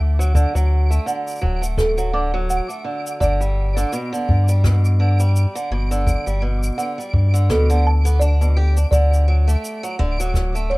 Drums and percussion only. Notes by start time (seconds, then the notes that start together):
0.21 shaker
0.35 kick, shaker
0.56 shaker
0.92 shaker
1.08 shaker
1.27 shaker
1.30 shaker
1.35 shaker
1.38 shaker
1.40 kick, shaker
1.63 shaker
1.78 kick, cross-stick, shaker
1.98 shaker
2.50 shaker
2.70 shaker
3.07 shaker
3.21 kick, shaker
3.41 shaker
3.78 shaker
3.93 shaker
4.14 shaker
4.29 kick
4.48 shaker
4.64 kick, cross-stick, shaker
4.85 shaker
5.20 shaker
5.36 shaker
5.56 shaker
5.92 shaker
6.07 kick, shaker
6.27 shaker
6.63 shaker
6.79 shaker
7.00 shaker
7.14 kick
7.35 shaker
7.50 kick, cross-stick, shaker
7.70 shaker
8.06 shaker
8.21 shaker
8.42 shaker
8.77 shaker
8.92 kick, shaker
9.13 shaker
9.49 shaker
9.65 shaker
9.84 shaker
9.99 kick
10.20 shaker
10.34 kick, cross-stick, shaker
10.56 shaker